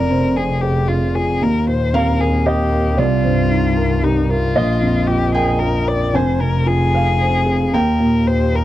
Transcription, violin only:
0, 0, Header, 1, 2, 480
1, 0, Start_track
1, 0, Tempo, 524934
1, 1290, Time_signature, 3, 2, 24, 8
1, 4653, Tempo, 532860
1, 7856, End_track
2, 0, Start_track
2, 0, Title_t, "Violin"
2, 0, Program_c, 0, 40
2, 0, Note_on_c, 0, 70, 87
2, 331, Note_on_c, 0, 68, 74
2, 345, Note_off_c, 0, 70, 0
2, 559, Note_on_c, 0, 67, 79
2, 572, Note_off_c, 0, 68, 0
2, 803, Note_on_c, 0, 65, 72
2, 816, Note_off_c, 0, 67, 0
2, 1053, Note_on_c, 0, 68, 80
2, 1067, Note_off_c, 0, 65, 0
2, 1302, Note_on_c, 0, 70, 79
2, 1316, Note_off_c, 0, 68, 0
2, 1536, Note_off_c, 0, 70, 0
2, 1549, Note_on_c, 0, 72, 80
2, 1783, Note_on_c, 0, 70, 88
2, 1797, Note_off_c, 0, 72, 0
2, 2014, Note_on_c, 0, 68, 78
2, 2028, Note_off_c, 0, 70, 0
2, 2248, Note_on_c, 0, 67, 86
2, 2261, Note_off_c, 0, 68, 0
2, 2726, Note_on_c, 0, 65, 91
2, 2739, Note_off_c, 0, 67, 0
2, 3688, Note_on_c, 0, 63, 86
2, 3702, Note_off_c, 0, 65, 0
2, 3929, Note_on_c, 0, 65, 89
2, 3943, Note_off_c, 0, 63, 0
2, 4631, Note_on_c, 0, 67, 97
2, 4645, Note_off_c, 0, 65, 0
2, 4879, Note_off_c, 0, 67, 0
2, 4885, Note_on_c, 0, 68, 86
2, 5105, Note_on_c, 0, 70, 89
2, 5118, Note_off_c, 0, 68, 0
2, 5360, Note_on_c, 0, 74, 93
2, 5373, Note_off_c, 0, 70, 0
2, 5607, Note_on_c, 0, 72, 78
2, 5620, Note_off_c, 0, 74, 0
2, 5836, Note_on_c, 0, 70, 86
2, 5849, Note_off_c, 0, 72, 0
2, 6081, Note_on_c, 0, 68, 110
2, 6094, Note_off_c, 0, 70, 0
2, 7037, Note_on_c, 0, 70, 82
2, 7050, Note_off_c, 0, 68, 0
2, 7523, Note_on_c, 0, 72, 83
2, 7536, Note_off_c, 0, 70, 0
2, 7775, Note_on_c, 0, 70, 77
2, 7788, Note_off_c, 0, 72, 0
2, 7856, Note_off_c, 0, 70, 0
2, 7856, End_track
0, 0, End_of_file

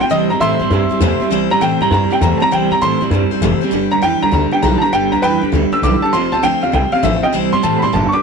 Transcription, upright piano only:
0, 0, Header, 1, 2, 480
1, 0, Start_track
1, 0, Key_signature, 0, "major"
1, 0, Tempo, 301054
1, 177, Time_signature, 4, 2, 24, 8
1, 13114, End_track
2, 0, Start_track
2, 0, Title_t, "Upright piano"
2, 0, Program_c, 0, 0
2, 18, Note_on_c, 0, 79, 101
2, 172, Note_on_c, 0, 75, 106
2, 177, Note_off_c, 0, 79, 0
2, 476, Note_off_c, 0, 75, 0
2, 481, Note_on_c, 0, 82, 82
2, 644, Note_on_c, 0, 76, 109
2, 648, Note_off_c, 0, 82, 0
2, 655, Note_on_c, 0, 84, 114
2, 2026, Note_off_c, 0, 76, 0
2, 2052, Note_off_c, 0, 84, 0
2, 2412, Note_on_c, 0, 82, 107
2, 2574, Note_off_c, 0, 82, 0
2, 2575, Note_on_c, 0, 79, 97
2, 2877, Note_off_c, 0, 79, 0
2, 2897, Note_on_c, 0, 82, 93
2, 3046, Note_off_c, 0, 82, 0
2, 3070, Note_on_c, 0, 82, 89
2, 3365, Note_off_c, 0, 82, 0
2, 3389, Note_on_c, 0, 79, 87
2, 3541, Note_on_c, 0, 82, 83
2, 3542, Note_off_c, 0, 79, 0
2, 3789, Note_on_c, 0, 81, 68
2, 3817, Note_off_c, 0, 81, 0
2, 3838, Note_off_c, 0, 82, 0
2, 3862, Note_on_c, 0, 82, 111
2, 4018, Note_off_c, 0, 82, 0
2, 4024, Note_on_c, 0, 79, 97
2, 4322, Note_off_c, 0, 79, 0
2, 4334, Note_on_c, 0, 82, 96
2, 4494, Note_off_c, 0, 82, 0
2, 4495, Note_on_c, 0, 84, 111
2, 4797, Note_off_c, 0, 84, 0
2, 6242, Note_on_c, 0, 82, 92
2, 6408, Note_off_c, 0, 82, 0
2, 6417, Note_on_c, 0, 79, 107
2, 6717, Note_off_c, 0, 79, 0
2, 6737, Note_on_c, 0, 82, 103
2, 6884, Note_off_c, 0, 82, 0
2, 6908, Note_on_c, 0, 82, 88
2, 7203, Note_off_c, 0, 82, 0
2, 7215, Note_on_c, 0, 79, 93
2, 7374, Note_off_c, 0, 79, 0
2, 7374, Note_on_c, 0, 82, 91
2, 7615, Note_on_c, 0, 81, 73
2, 7645, Note_off_c, 0, 81, 0
2, 7655, Note_off_c, 0, 82, 0
2, 7678, Note_on_c, 0, 82, 99
2, 7846, Note_off_c, 0, 82, 0
2, 7858, Note_on_c, 0, 79, 109
2, 8158, Note_off_c, 0, 79, 0
2, 8163, Note_on_c, 0, 82, 89
2, 8325, Note_on_c, 0, 71, 100
2, 8328, Note_off_c, 0, 82, 0
2, 8337, Note_on_c, 0, 79, 104
2, 8619, Note_off_c, 0, 71, 0
2, 8637, Note_off_c, 0, 79, 0
2, 9131, Note_on_c, 0, 88, 102
2, 9292, Note_off_c, 0, 88, 0
2, 9301, Note_on_c, 0, 86, 94
2, 9599, Note_off_c, 0, 86, 0
2, 9604, Note_on_c, 0, 81, 87
2, 9769, Note_off_c, 0, 81, 0
2, 9772, Note_on_c, 0, 84, 107
2, 10075, Note_off_c, 0, 84, 0
2, 10080, Note_on_c, 0, 81, 98
2, 10247, Note_off_c, 0, 81, 0
2, 10256, Note_on_c, 0, 79, 117
2, 10557, Note_off_c, 0, 79, 0
2, 10567, Note_on_c, 0, 77, 89
2, 10730, Note_off_c, 0, 77, 0
2, 10737, Note_on_c, 0, 79, 92
2, 11038, Note_off_c, 0, 79, 0
2, 11041, Note_on_c, 0, 77, 103
2, 11207, Note_off_c, 0, 77, 0
2, 11213, Note_on_c, 0, 76, 93
2, 11516, Note_off_c, 0, 76, 0
2, 11529, Note_on_c, 0, 75, 87
2, 11533, Note_on_c, 0, 79, 93
2, 11685, Note_off_c, 0, 75, 0
2, 11693, Note_off_c, 0, 79, 0
2, 11999, Note_on_c, 0, 84, 109
2, 12167, Note_off_c, 0, 84, 0
2, 12168, Note_on_c, 0, 81, 96
2, 12415, Note_on_c, 0, 83, 72
2, 12445, Note_off_c, 0, 83, 0
2, 12473, Note_off_c, 0, 81, 0
2, 12481, Note_on_c, 0, 84, 98
2, 12647, Note_off_c, 0, 84, 0
2, 12648, Note_on_c, 0, 81, 91
2, 12893, Note_on_c, 0, 85, 74
2, 12924, Note_off_c, 0, 85, 0
2, 12953, Note_off_c, 0, 81, 0
2, 12968, Note_on_c, 0, 86, 98
2, 13114, Note_off_c, 0, 86, 0
2, 13114, End_track
0, 0, End_of_file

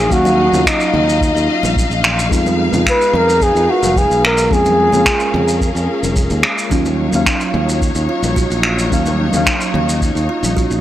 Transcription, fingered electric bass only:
0, 0, Header, 1, 2, 480
1, 0, Start_track
1, 0, Key_signature, -6, "minor"
1, 0, Tempo, 550459
1, 98, Time_signature, 4, 2, 24, 8
1, 9425, End_track
2, 0, Start_track
2, 0, Title_t, "Fingered electric bass"
2, 0, Program_c, 0, 33
2, 95, Note_on_c, 0, 39, 89
2, 425, Note_off_c, 0, 39, 0
2, 458, Note_on_c, 0, 39, 70
2, 557, Note_off_c, 0, 39, 0
2, 816, Note_on_c, 0, 39, 91
2, 1145, Note_off_c, 0, 39, 0
2, 1179, Note_on_c, 0, 39, 93
2, 1277, Note_off_c, 0, 39, 0
2, 1423, Note_on_c, 0, 34, 88
2, 1619, Note_off_c, 0, 34, 0
2, 1656, Note_on_c, 0, 34, 85
2, 1984, Note_off_c, 0, 34, 0
2, 2014, Note_on_c, 0, 41, 89
2, 2345, Note_off_c, 0, 41, 0
2, 2377, Note_on_c, 0, 41, 72
2, 2476, Note_off_c, 0, 41, 0
2, 2733, Note_on_c, 0, 41, 94
2, 3064, Note_off_c, 0, 41, 0
2, 3097, Note_on_c, 0, 41, 92
2, 3196, Note_off_c, 0, 41, 0
2, 3337, Note_on_c, 0, 29, 84
2, 3536, Note_off_c, 0, 29, 0
2, 3576, Note_on_c, 0, 35, 80
2, 3903, Note_off_c, 0, 35, 0
2, 3931, Note_on_c, 0, 41, 91
2, 4263, Note_off_c, 0, 41, 0
2, 4299, Note_on_c, 0, 41, 72
2, 4397, Note_off_c, 0, 41, 0
2, 4655, Note_on_c, 0, 41, 99
2, 4985, Note_off_c, 0, 41, 0
2, 5014, Note_on_c, 0, 41, 96
2, 5114, Note_off_c, 0, 41, 0
2, 5256, Note_on_c, 0, 29, 81
2, 5502, Note_on_c, 0, 39, 95
2, 5515, Note_off_c, 0, 29, 0
2, 5599, Note_off_c, 0, 39, 0
2, 5853, Note_on_c, 0, 39, 84
2, 6184, Note_off_c, 0, 39, 0
2, 6215, Note_on_c, 0, 39, 72
2, 6315, Note_off_c, 0, 39, 0
2, 6573, Note_on_c, 0, 39, 101
2, 6904, Note_off_c, 0, 39, 0
2, 6932, Note_on_c, 0, 39, 89
2, 7034, Note_off_c, 0, 39, 0
2, 7172, Note_on_c, 0, 34, 82
2, 7374, Note_off_c, 0, 34, 0
2, 7414, Note_on_c, 0, 34, 86
2, 7743, Note_off_c, 0, 34, 0
2, 7775, Note_on_c, 0, 39, 92
2, 8105, Note_off_c, 0, 39, 0
2, 8135, Note_on_c, 0, 39, 76
2, 8235, Note_off_c, 0, 39, 0
2, 8493, Note_on_c, 0, 39, 95
2, 8824, Note_off_c, 0, 39, 0
2, 8853, Note_on_c, 0, 39, 96
2, 8954, Note_off_c, 0, 39, 0
2, 9092, Note_on_c, 0, 34, 88
2, 9294, Note_off_c, 0, 34, 0
2, 9332, Note_on_c, 0, 34, 94
2, 9425, Note_off_c, 0, 34, 0
2, 9425, End_track
0, 0, End_of_file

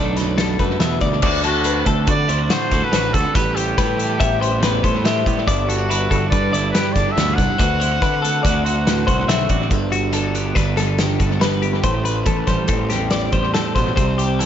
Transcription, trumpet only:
0, 0, Header, 1, 2, 480
1, 0, Start_track
1, 0, Key_signature, 1, "major"
1, 0, Tempo, 424628
1, 1386, Time_signature, 5, 2, 24, 8
1, 16341, End_track
2, 0, Start_track
2, 0, Title_t, "Trumpet"
2, 0, Program_c, 0, 56
2, 1646, Note_on_c, 0, 66, 86
2, 2083, Note_off_c, 0, 66, 0
2, 2371, Note_on_c, 0, 74, 101
2, 2756, Note_off_c, 0, 74, 0
2, 2756, Note_on_c, 0, 74, 65
2, 2841, Note_on_c, 0, 72, 99
2, 2858, Note_off_c, 0, 74, 0
2, 3210, Note_on_c, 0, 71, 98
2, 3227, Note_off_c, 0, 72, 0
2, 3542, Note_on_c, 0, 69, 91
2, 3559, Note_off_c, 0, 71, 0
2, 3783, Note_on_c, 0, 71, 99
2, 3800, Note_off_c, 0, 69, 0
2, 4016, Note_on_c, 0, 67, 83
2, 4033, Note_off_c, 0, 71, 0
2, 5456, Note_off_c, 0, 67, 0
2, 6413, Note_on_c, 0, 66, 84
2, 7089, Note_off_c, 0, 66, 0
2, 7116, Note_on_c, 0, 74, 87
2, 7571, Note_off_c, 0, 74, 0
2, 7586, Note_on_c, 0, 71, 85
2, 7828, Note_on_c, 0, 74, 92
2, 7845, Note_off_c, 0, 71, 0
2, 8044, Note_on_c, 0, 76, 93
2, 8061, Note_off_c, 0, 74, 0
2, 8298, Note_on_c, 0, 78, 103
2, 8315, Note_off_c, 0, 76, 0
2, 10475, Note_off_c, 0, 78, 0
2, 16341, End_track
0, 0, End_of_file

